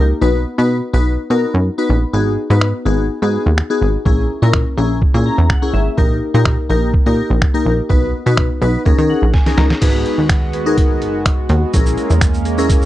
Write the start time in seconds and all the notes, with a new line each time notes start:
Already playing: C#2
0.21 B1 B3 D#4 F#4 B4
0.58 B2 B3 D#4 F#4 B4
0.93 B1 B3 D#4 F#4 B4
1.30 B2 B3 D#4 F#4 A#4
1.54 F#2
1.78 B3 D#4 F#4 B4
1.90 A#1
2.13 G#1 B3 D#4 F#4 G#4
2.50 G#2 B3 D#4 F#4 B4
2.61 finger snap
2.85 G#1 B3 D#4 F#4 G#4
3.22 G#2 B3 D#4 F#4 G#4
3.46 D#2
3.58 finger snap
3.70 B3 D#4 F#4 G#4
3.82 G#1
4.05 A#1 A#3 C#4 E4 G#4, kick
4.42 A#2 A#3 C#4 E4 A#4
4.53 finger snap, kick
4.77 A#1 A#3 C#4 E4 G#4
5.02 kick
5.14 A#2 A#3 C#4 E4 G#4
5.26 A#5
5.38 E2
5.50 F#5, finger snap, kick
5.62 A#3 C#4 E4 G#4
5.74 G#1 E5
5.97 A#1 A#3 D#4 G4 A#4, kick
6.34 A#2 A#3 D#4 G4 A#4
6.45 finger snap, kick
6.69 A#1 A#3 D#4 G4 A#4
6.94 kick
7.06 A#2 A#3 D#4 G4 A#4
7.30 A#1
7.42 finger snap, kick
7.54 A#3 D#4 G4 A#4
7.66 A#1
7.89 B1 B3 D#4 F#4 B4, kick
8.26 B2 B3 D#4 F#4 B4
8.37 finger snap, kick
8.61 B1 B3 D#4 F#4 B4
8.85 D#2 C#4 D#4 G#4 A#4, kick
8.98 D#3 C#4 D#4 G#4 A#4
9.10 F#5
9.22 A#1
9.34 G#5, kick, snare
9.46 C#4 D#4 G#4 A#4, snare
9.58 C#2 A#5, snare
9.70 snare
9.81 G#1 G#3 B3 D#4 F#4 G#4 B4, kick, closed hi-hat, crash
10.06 closed hi-hat
10.18 D#2
10.29 finger snap, kick, closed hi-hat
10.53 G#4 B4, closed hi-hat
10.66 D#4 F#4 G#4 A#4
10.78 kick, closed hi-hat
11.02 F#1, closed hi-hat
11.26 finger snap, kick, closed hi-hat
11.49 D#2, closed hi-hat
11.73 A#1 A#3 C#4 E4 G#4 A#4, kick, closed hi-hat, shaker
11.86 shaker
11.98 closed hi-hat, shaker
12.10 E2, shaker
12.21 finger snap, kick, closed hi-hat, shaker
12.34 shaker
12.45 G#4 A#4, closed hi-hat, shaker
12.58 C#4 E4 G#4 A#4, shaker
12.70 kick, closed hi-hat, shaker
12.82 shaker